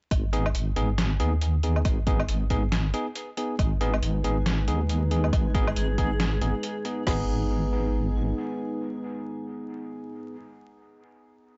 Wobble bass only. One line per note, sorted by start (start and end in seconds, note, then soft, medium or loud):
0.11 0.53 G#1 loud
0.55 0.75 G#1 medium
0.76 1.21 G#1 medium
1.20 1.84 D#2 loud
1.85 2.27 G#1 loud
2.29 2.49 G#1 medium
2.50 2.93 G#1 medium
3.59 4.01 G#1 loud
4.02 4.23 G#1 medium
4.24 4.69 G#1 medium
4.67 5.32 D#2 loud
5.33 5.75 G#1 loud
5.76 5.97 G#1 medium
5.98 6.40 G#1 medium
6.42 6.53 G#1 loud
7.07 8.33 G#1 loud